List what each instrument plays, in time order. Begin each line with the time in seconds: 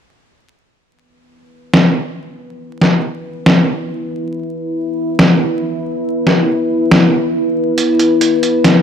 0.87 ambient pad E4 B4
1.74 snare
2.81 snare
3.46 snare
5.19 snare
6.27 snare
6.91 snare
7.78 closed hi-hat
7.99 closed hi-hat
8.21 closed hi-hat
8.43 closed hi-hat
8.64 snare, closed hi-hat